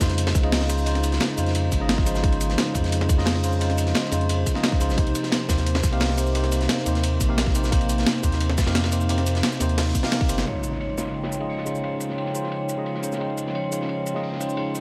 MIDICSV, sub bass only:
0, 0, Header, 1, 2, 480
1, 0, Start_track
1, 0, Tempo, 342857
1, 1210, Time_signature, 4, 2, 24, 8
1, 20726, End_track
2, 0, Start_track
2, 0, Title_t, "Sub bass"
2, 0, Program_c, 0, 38
2, 11, Note_on_c, 0, 41, 97
2, 472, Note_off_c, 0, 41, 0
2, 490, Note_on_c, 0, 37, 89
2, 1671, Note_off_c, 0, 37, 0
2, 1930, Note_on_c, 0, 41, 98
2, 2391, Note_off_c, 0, 41, 0
2, 2409, Note_on_c, 0, 32, 95
2, 3591, Note_off_c, 0, 32, 0
2, 3849, Note_on_c, 0, 41, 96
2, 4330, Note_on_c, 0, 37, 92
2, 4351, Note_off_c, 0, 41, 0
2, 4441, Note_off_c, 0, 37, 0
2, 4454, Note_on_c, 0, 41, 97
2, 5512, Note_off_c, 0, 41, 0
2, 5768, Note_on_c, 0, 41, 97
2, 6230, Note_off_c, 0, 41, 0
2, 6728, Note_on_c, 0, 37, 103
2, 6854, Note_on_c, 0, 32, 94
2, 6875, Note_off_c, 0, 37, 0
2, 6959, Note_off_c, 0, 32, 0
2, 6969, Note_on_c, 0, 36, 100
2, 7186, Note_off_c, 0, 36, 0
2, 7688, Note_on_c, 0, 39, 92
2, 8150, Note_off_c, 0, 39, 0
2, 8167, Note_on_c, 0, 36, 90
2, 9350, Note_off_c, 0, 36, 0
2, 9610, Note_on_c, 0, 39, 93
2, 10071, Note_off_c, 0, 39, 0
2, 10089, Note_on_c, 0, 34, 93
2, 11271, Note_off_c, 0, 34, 0
2, 11531, Note_on_c, 0, 39, 96
2, 12010, Note_on_c, 0, 36, 89
2, 12031, Note_off_c, 0, 39, 0
2, 12120, Note_off_c, 0, 36, 0
2, 12132, Note_on_c, 0, 41, 95
2, 13191, Note_off_c, 0, 41, 0
2, 13451, Note_on_c, 0, 39, 98
2, 13912, Note_off_c, 0, 39, 0
2, 14408, Note_on_c, 0, 31, 102
2, 14626, Note_off_c, 0, 31, 0
2, 20726, End_track
0, 0, End_of_file